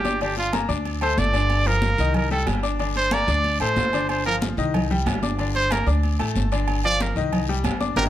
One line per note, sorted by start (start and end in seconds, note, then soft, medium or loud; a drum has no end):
0.00 0.64 G1 medium
0.00 0.22 G4 medium
0.05 0.18 D4 medium
0.05 0.18 D5 medium
0.05 0.18 D6 medium
0.05 high conga medium
0.05 short guiro medium
0.21 0.48 D3 medium
0.21 0.48 D4 medium
0.21 0.37 G4 medium
0.21 0.48 D5 medium
0.21 high conga soft
0.21 low agogo medium
0.21 long guiro medium
0.37 0.53 F4 medium
0.37 high conga soft
0.37 low agogo medium
0.53 0.67 A#3 medium
0.53 0.67 A#4 medium
0.53 0.67 A#5 medium
0.53 high conga loud
0.53 low agogo loud
0.53 short guiro medium
0.68 1.14 D2 loud
0.68 0.95 D4 medium
0.68 0.96 D5 medium
0.68 0.96 D6 medium
0.68 high conga soft
0.68 short guiro medium
0.85 high conga soft
0.85 low agogo medium
0.85 long guiro medium
1.01 1.29 A3 medium
1.01 1.29 A4 medium
1.01 1.20 C5 medium
1.01 1.29 A5 medium
1.01 high conga soft
1.01 low agogo loud
1.18 1.93 G1 loud
1.18 1.69 D5 loud
1.18 high conga medium
1.18 short guiro medium
1.33 1.60 D3 medium
1.33 1.60 D4 medium
1.33 1.61 D5 medium
1.33 high conga soft
1.33 low agogo medium
1.33 short guiro medium
1.50 high conga soft
1.50 low agogo loud
1.50 long guiro medium
1.66 1.93 F3 medium
1.66 1.93 F4 medium
1.66 2.15 A#4 loud
1.66 1.93 F5 medium
1.66 high conga soft
1.66 low agogo medium
1.82 high conga loud
1.82 short guiro medium
1.98 2.44 C2 loud
1.98 2.26 D#3 medium
1.98 2.26 D#4 medium
1.98 2.26 D#5 medium
1.98 high conga soft
1.98 short guiro medium
2.14 2.31 A#4 medium
2.14 high conga soft
2.14 low conga medium
2.14 low agogo loud
2.14 long guiro medium
2.31 2.58 G3 medium
2.31 2.58 G4 medium
2.31 2.47 A4 medium
2.31 2.58 G5 medium
2.31 high conga soft
2.47 3.22 G1 medium
2.47 high conga medium
2.47 low timbale medium
2.47 low agogo loud
2.47 short guiro medium
2.63 2.77 D4 medium
2.63 2.77 D5 medium
2.63 2.77 D6 medium
2.63 short guiro medium
2.79 3.07 D3 medium
2.79 3.07 D4 medium
2.79 3.07 D5 medium
2.79 high conga soft
2.79 low agogo medium
2.79 long guiro medium
2.96 3.15 C5 loud
2.96 high conga soft
2.96 low agogo medium
3.11 3.26 A#3 medium
3.11 3.26 A#4 medium
3.11 3.60 D5 medium
3.11 3.26 A#5 medium
3.11 high conga loud
3.11 low agogo loud
3.11 short guiro medium
3.28 3.58 D2 loud
3.28 3.55 D4 medium
3.28 3.55 D5 medium
3.28 3.55 D6 medium
3.28 high conga soft
3.28 short guiro medium
3.44 high conga soft
3.44 low agogo medium
3.44 long guiro medium
3.60 3.76 A1 medium
3.60 3.87 A3 medium
3.60 3.88 A4 medium
3.60 4.06 C5 medium
3.60 3.88 A5 medium
3.60 high conga soft
3.60 low agogo loud
3.76 4.52 G1 medium
3.76 high conga medium
3.76 low timbale medium
3.76 short guiro medium
3.93 4.20 D3 medium
3.93 4.20 D4 medium
3.93 4.21 D5 medium
3.93 high conga soft
3.93 low agogo medium
3.93 short guiro medium
4.09 4.25 C5 medium
4.09 high conga soft
4.09 low agogo loud
4.09 long guiro medium
4.26 4.52 F3 medium
4.26 4.53 F4 medium
4.26 4.36 A#4 loud
4.26 4.53 F5 medium
4.26 high conga soft
4.26 low agogo medium
4.42 high conga loud
4.42 short guiro medium
4.57 5.03 C2 loud
4.57 4.85 D#3 medium
4.57 4.85 D#4 medium
4.57 4.85 D#5 medium
4.57 high conga soft
4.57 short guiro medium
4.74 high conga soft
4.74 low conga medium
4.74 low agogo loud
4.74 long guiro medium
4.90 5.17 G3 medium
4.90 5.17 G4 medium
4.90 5.17 G5 medium
4.90 high conga soft
4.90 low conga medium
5.06 5.81 G1 loud
5.06 high conga medium
5.06 low timbale medium
5.06 low agogo loud
5.06 short guiro medium
5.22 5.36 D4 medium
5.22 5.36 D5 medium
5.22 5.36 D6 medium
5.22 high conga medium
5.22 short guiro medium
5.39 5.65 D3 medium
5.39 5.66 D4 medium
5.39 5.66 D5 medium
5.39 high conga soft
5.39 low agogo medium
5.39 long guiro medium
5.55 5.74 C5 loud
5.55 high conga soft
5.55 low agogo medium
5.71 5.84 A#3 medium
5.71 5.84 A#4 medium
5.71 5.88 A#4 medium
5.71 5.85 A#5 medium
5.71 high conga loud
5.71 low agogo loud
5.71 short guiro medium
5.86 6.17 D2 loud
5.86 6.13 D4 medium
5.86 6.14 D5 medium
5.86 6.14 D6 medium
5.86 high conga soft
5.86 short guiro medium
6.03 high conga soft
6.03 low agogo medium
6.03 long guiro medium
6.19 6.35 A1 medium
6.19 6.46 A3 medium
6.19 6.46 A4 medium
6.19 6.46 A5 medium
6.19 high conga soft
6.19 low agogo loud
6.35 7.11 G1 medium
6.35 high conga medium
6.35 short guiro medium
6.52 6.78 D3 medium
6.52 6.79 D4 medium
6.52 6.79 D5 medium
6.52 high conga soft
6.52 low agogo medium
6.52 short guiro medium
6.68 high conga soft
6.68 low agogo loud
6.68 long guiro medium
6.84 7.11 F3 medium
6.84 7.11 F4 medium
6.84 7.03 D5 loud
6.84 7.11 F5 medium
6.84 high conga soft
6.84 low agogo medium
7.00 7.17 A#4 medium
7.00 high conga loud
7.00 short guiro medium
7.16 7.61 C2 medium
7.16 7.43 D#3 loud
7.16 7.43 D#4 loud
7.16 7.43 D#5 medium
7.16 high conga soft
7.16 short guiro medium
7.33 high conga soft
7.33 low conga medium
7.33 low agogo loud
7.33 long guiro medium
7.48 7.75 G3 medium
7.48 7.76 G4 medium
7.48 7.76 G5 medium
7.48 high conga soft
7.64 7.95 G1 medium
7.64 high conga medium
7.64 low timbale medium
7.64 low agogo loud
7.64 short guiro medium
7.81 7.94 D4 medium
7.81 7.94 D5 medium
7.81 7.94 D6 medium
7.81 high conga medium
7.81 short guiro medium
7.96 8.09 G1 medium
7.96 8.07 D4 loud
7.96 8.07 G4 loud
7.96 8.07 A#4 loud
7.96 8.05 A#4 loud
7.96 high conga loud
7.96 high timbale loud
7.96 long guiro loud